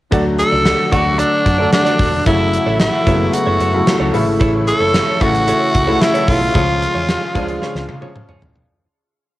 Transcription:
0.11 picked electric bass D2, grand piano D3 F#3 A3 F#4, clean electric guitar F#4 A4 D5, analog synth pad A4 D5 F#5 D6, kick, closed hi-hat
0.25 muted clean electric guitar stroke
0.39 tenor saxophone A4, muted clean electric guitar stroke, closed hi-hat
0.52 picked electric bass C#2, clean electric guitar F#4 A4 D5
0.65 muted clean electric guitar stroke, snare, closed hi-hat
0.79 muted clean electric guitar stroke
0.91 picked electric bass D2, grand piano D3 F#3 A3 F#4, clean electric guitar F#4 A4 D5, tenor saxophone F#4, kick, closed hi-hat
1.06 muted clean electric guitar stroke
1.18 tenor saxophone D4, clean electric guitar F#4 A4 D5, closed hi-hat
1.45 picked electric bass F#2, muted clean electric guitar stroke, kick, closed hi-hat
1.59 grand piano D3 F#3 A3 A4, clean electric guitar F#4 A4 D5
1.73 tenor saxophone D4, muted clean electric guitar stroke, snare, closed hi-hat
1.85 clean electric guitar F#4 A4 D5, closed hi-hat
1.99 picked electric bass E1, clean electric guitar F#4 A4 D5, kick, open hi-hat
2.13 muted clean electric guitar stroke
2.26 picked electric bass F#1, grand piano C#3 F#3 A3 E4, clean electric guitar E4 A4 C#5, tenor saxophone E4, analog synth pad E5 C#6, kick, closed hi-hat
2.40 muted clean electric guitar stroke
2.53 muted clean electric guitar stroke, closed hi-hat
2.66 picked electric bass A1, clean electric guitar E4 A4 C#5
2.80 tenor saxophone E4, muted clean electric guitar stroke, snare, closed hi-hat
2.93 muted clean electric guitar stroke
3.06 picked electric bass F#1, grand piano C#3 F#3 G#3 B3, clean electric guitar E4 A4 C#5, kick, closed hi-hat
3.14 grand piano A3
3.20 muted clean electric guitar stroke
3.33 tenor saxophone F#4, muted clean electric guitar stroke, closed hi-hat
3.47 picked electric bass F#1, clean electric guitar E4 A4 C#5
3.60 picked electric bass F#2, clean electric guitar E4 A4 C#5, closed hi-hat
3.73 grand piano C#3 F#3 A3 E4
3.87 muted clean electric guitar stroke, snare, closed hi-hat
4.00 picked electric bass C#2, clean electric guitar E4 A4 C#5
4.13 picked electric bass A1, grand piano C#3 E3 A3 E4, clean electric guitar E4 A4 C#5, analog synth pad C#5, open hi-hat
4.26 picked electric bass G#1, muted clean electric guitar stroke
4.40 picked electric bass A1, clean electric guitar E4 A4 C#5, kick, closed hi-hat
4.53 muted clean electric guitar stroke
4.67 tenor saxophone A4, muted clean electric guitar stroke, closed hi-hat
4.80 picked electric bass F#1, clean electric guitar E4 A4 C#5
4.94 muted clean electric guitar stroke, snare, closed hi-hat
5.08 muted clean electric guitar stroke
5.21 picked electric bass A1, grand piano C#3 E3 A3 F#4, clean electric guitar E4 A4 C#5, tenor saxophone F#4, kick, closed hi-hat
5.34 muted clean electric guitar stroke, closed hi-hat
5.47 clean electric guitar E4 A4 C#5, closed hi-hat
5.61 muted clean electric guitar stroke
5.74 picked electric bass C#2, muted clean electric guitar stroke, kick, closed hi-hat
5.87 grand piano C#3 E3 A3 E4, clean electric guitar E4 A4 C#5
6.01 tenor saxophone E4, snare, closed hi-hat
6.14 clean electric guitar E4 A4 C#5, closed hi-hat
6.28 picked electric bass B1, clean electric guitar E4 A4 C#5, tenor saxophone F4, kick, open hi-hat
6.41 muted clean electric guitar stroke
6.54 picked electric bass C#2, grand piano C#3 F3 G#3 F4, clean electric guitar F4 G#4 C#5, analog synth pad G#4 F5, kick, closed hi-hat
6.68 muted clean electric guitar stroke
6.81 muted clean electric guitar stroke, closed hi-hat
6.95 picked electric bass E2, clean electric guitar F4 G#4 C#5
7.08 muted clean electric guitar stroke, snare, closed hi-hat
7.21 muted clean electric guitar stroke
7.35 picked electric bass C#2, grand piano C#3 F3 G#3 D4, clean electric guitar F4 G#4 C#5, kick, closed hi-hat
7.42 grand piano F4
7.49 muted clean electric guitar stroke, closed hi-hat
7.62 clean electric guitar F4 G#4 C#5, snare
7.75 picked electric bass C#2, muted clean electric guitar stroke, snare
7.89 picked electric bass C#3, muted clean electric guitar stroke, high tom
8.01 grand piano C#3 F3 G#3 C#4, clean electric guitar F4 G#4 C#5, high tom
8.16 muted clean electric guitar stroke, mid tom
8.29 picked electric bass G#2, clean electric guitar F4 G#4 C#5, mid tom
8.42 picked electric bass A1, muted clean electric guitar stroke, floor tom
8.56 picked electric bass B1, muted clean electric guitar stroke, floor tom

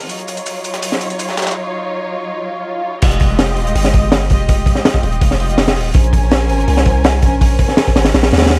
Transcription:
0.01 closed hi-hat
0.09 string section F#3 D#4 F4 C#5, open hi-hat, shaker
0.19 closed hi-hat
0.28 open hi-hat, shaker
0.37 closed hi-hat
0.46 open hi-hat, shaker
0.64 open hi-hat, shaker
0.74 snare, closed hi-hat
0.82 open hi-hat, shaker
0.92 snare
1.01 open hi-hat, shaker
1.10 closed hi-hat
1.19 open hi-hat, shaker
1.29 snare
1.37 snare, open hi-hat, shaker
1.42 snare, shaker
1.47 snare, shaker
1.51 snare, shaker
2.29 swell
3.02 808-style bass F1, string section G#3 F4 G4 D#5, kick, open hi-hat, crash
3.11 closed hi-hat
3.20 kick, open hi-hat
3.39 snare, open hi-hat
3.56 808-style bass D#1, open hi-hat
3.67 closed hi-hat
3.75 808-style bass G1, open hi-hat
3.84 snare
3.93 kick, open hi-hat
4.12 snare, open hi-hat
4.30 808-style bass F1, string section G#3 F4 G4 D#5, kick, open hi-hat
4.49 string section G#3 F4 G4 D#5, kick, open hi-hat
4.66 kick, open hi-hat
4.75 snare
4.85 snare, open hi-hat
4.94 kick
5.03 808-style bass D#1, open hi-hat
5.12 closed hi-hat
5.21 808-style bass F1, kick, open hi-hat
5.31 snare
5.40 string section G#3 F4 G4 D#5, open hi-hat
5.49 string section G#3 F4 G4 D#5, closed hi-hat
5.58 snare, open hi-hat
5.68 snare, open hi-hat
5.76 808-style bass D#1, open hi-hat
5.94 808-style bass A#1, string section C#4 A#4 C5 G#5, kick, open hi-hat
6.04 closed hi-hat
6.13 kick, open hi-hat
6.31 snare, open hi-hat
6.49 808-style bass G#1, open hi-hat
6.60 closed hi-hat
6.68 808-style bass C2, open hi-hat
6.77 snare
6.85 kick, open hi-hat
7.04 snare, open hi-hat
7.22 808-style bass A#1, string section C#4 A#4 C5 G#5, kick, open hi-hat
7.41 string section C#4 A#4 C5 G#5, kick, open hi-hat
7.59 kick, open hi-hat
7.69 snare
7.77 snare, open hi-hat
7.88 kick
7.96 808-style bass G#1, snare, open hi-hat
8.05 snare, open hi-hat
8.14 808-style bass A#1, snare, open hi-hat
8.23 snare, open hi-hat
8.31 808-style bass D#2, snare, open hi-hat
8.37 snare, open hi-hat
8.42 snare, open hi-hat
8.46 snare, open hi-hat
8.50 snare, open hi-hat

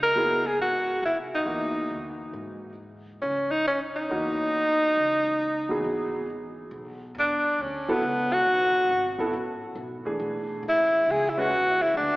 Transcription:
Already playing: upright bass C#2
0.03 tenor saxophone A#4
0.16 grand piano F#3 B3 E4 G#4
0.46 tenor saxophone G#4
0.59 upright bass G#2, tenor saxophone F#4
1.02 upright bass C2, tenor saxophone E4
1.34 tenor saxophone D#4
1.45 upright bass E2, grand piano E3 A#3 D#4 F#4
1.91 upright bass D2
2.33 upright bass G#2
3.22 upright bass C#2, tenor saxophone C#4
3.51 tenor saxophone D#4
3.67 tenor saxophone C#4
3.96 tenor saxophone D#4
4.09 upright bass E2, grand piano E3 A#3 D#4 F#4
4.97 upright bass C#2
5.69 grand piano E3 F#3 B3 G#4
5.84 upright bass G#1
6.71 upright bass B1
7.15 upright bass E2
7.19 tenor saxophone D4
7.44 muted upright bass stroke
7.58 upright bass D2, tenor saxophone C#4
7.88 grand piano F#3 B3 E4 A4, tenor saxophone B3
8.02 upright bass C#2
8.33 tenor saxophone F#4
8.46 upright bass B1
8.89 upright bass G#1
9.18 grand piano F#3 B3 E4 A4
9.33 upright bass A1
9.75 upright bass B1
10.05 grand piano E3 A3 D4 G#4, muted upright bass stroke
10.19 upright bass B1
10.63 upright bass A1
10.69 tenor saxophone E4
11.06 upright bass C#2
11.11 tenor saxophone G#4
11.29 tenor saxophone E4
11.37 grand piano G#3 C#4 F#4 B4, tenor saxophone F#4
11.50 upright bass E2
11.80 tenor saxophone E4, muted upright bass stroke
11.94 upright bass D2, tenor saxophone D4

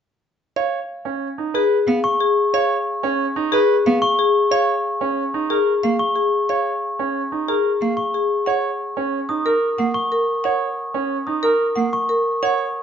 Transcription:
0.56 grand piano C#5, marimba F5
1.05 grand piano C#4
1.38 grand piano D#4
1.54 marimba G#4, grand piano B4
1.87 cello B3, marimba F5
2.04 glockenspiel C#6
2.21 marimba G#4
2.54 grand piano C#5, marimba F5
3.03 grand piano C#4
3.36 grand piano D#4
3.52 marimba G#4, grand piano B4
3.86 cello B3, marimba F5
4.02 glockenspiel C#6
4.19 marimba G#4
4.51 grand piano C#5, marimba F5
5.01 grand piano C#4
5.34 grand piano D#4
5.50 marimba G#4, grand piano A#4
5.83 cello A#3, marimba F5
5.99 glockenspiel C#6
6.15 marimba G#4
6.49 grand piano C#5, marimba F5
6.99 grand piano C#4
7.32 grand piano D#4
7.48 marimba G#4, grand piano A#4
7.81 cello A#3, marimba F5
7.97 glockenspiel C#6
8.14 marimba G#4
8.46 grand piano C#5, marimba F#5
8.97 grand piano C#4
9.29 grand piano D#4, glockenspiel D#6
9.45 grand piano A#4, marimba A#4
9.78 cello A#3, marimba F#5
9.94 glockenspiel C#6
10.12 marimba A#4
10.44 grand piano C#5, marimba F#5
10.94 grand piano C#4
11.27 grand piano D#4, glockenspiel D#6
11.43 marimba A#4, grand piano A#4
11.76 cello A#3, marimba F#5
11.93 glockenspiel C#6
12.09 marimba A#4
12.43 grand piano C#5, marimba F#5

